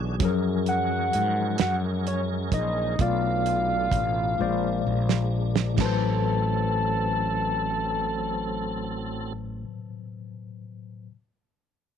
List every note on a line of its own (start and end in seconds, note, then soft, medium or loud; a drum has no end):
0.00 0.17 B1 loud
0.00 0.15 E3 medium
0.00 0.17 E3 medium
0.00 0.16 D4 medium
0.00 0.17 D4 medium
0.00 0.16 F#4 medium
0.00 0.17 F#4 medium
0.00 0.18 G#4 medium
0.00 2.95 G#4 medium
0.19 1.09 F#2 loud
0.19 2.95 F3 medium
0.19 2.95 F#3 medium
0.19 2.96 G#3 medium
0.19 2.96 C#4 medium
0.19 2.96 G#4 medium
0.19 2.96 A#4 medium
0.19 kick loud
0.19 closed hi-hat medium
0.25 2.97 A#4 medium
0.66 1.56 F#5 loud
0.66 closed hi-hat medium
1.13 1.56 G#2 medium
1.13 closed hi-hat medium
1.58 2.49 F#2 medium
1.58 1.75 F#5 loud
1.58 snare loud
1.58 closed hi-hat medium
2.07 2.21 C#5 medium
2.07 closed hi-hat medium
2.52 2.95 A#1 loud
2.52 3.02 D#5 medium
2.52 kick medium
2.52 closed hi-hat medium
2.99 3.88 B1 loud
2.99 4.39 B2 medium
2.99 4.37 A3 medium
2.99 4.39 A3 medium
2.99 4.37 B3 medium
2.99 5.75 D4 medium
2.99 4.39 F4 medium
2.99 4.40 D5 medium
2.99 5.32 F5 loud
2.99 kick loud
2.99 closed hi-hat medium
3.46 closed hi-hat medium
3.92 4.35 A1 medium
3.92 kick medium
3.92 closed hi-hat medium
4.38 4.82 A#1 loud
4.38 5.78 A#2 medium
4.38 5.76 G#3 medium
4.38 5.79 G#3 medium
4.38 5.77 A#3 medium
4.38 5.79 C5 medium
4.38 5.80 D5 medium
4.87 5.75 A#1 medium
5.09 snare medium
5.56 snare loud
5.74 9.59 A2 medium
5.74 9.33 A2 medium
5.74 9.62 F#3 medium
5.74 9.33 F#3 medium
5.74 9.33 C4 medium
5.74 9.33 A4 medium
5.74 kick loud
5.74 crash medium
5.79 9.63 A1 loud
5.79 9.66 B4 medium
5.79 9.34 A5 loud
5.79 snare loud
5.86 9.70 C5 medium